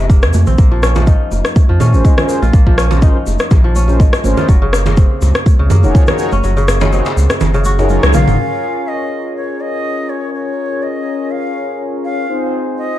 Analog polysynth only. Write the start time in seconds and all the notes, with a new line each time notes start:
1.94 C#4 F4 G#4 A#4 C5
2.18 C#4 F4 G#4 A#4 C5
2.91 C#4 F4 G#4 A#4 C5
3.02 C#4 F4 G#4 A#4 C5
3.88 C#4 F4 G#4 A#4 C5
4.24 C#4 F4 G#4 A#4 C5
5.84 D#4 F#4 G#4 A#4 C#5
6.08 D#4 F#4 G#4 A#4 C#5
6.81 D#4 F#4 G#4 A#4 C#5
6.92 D#4 F#4 G#4 A#4 C#5
7.79 D#4 F#4 G#4 A#4 C#5
7.90 D#4 F#4 G#4 A#4 C#5
8.39 C#4 F4 G#4 A#4 C#5
12.29 C4 D#4 F4 G#4 C5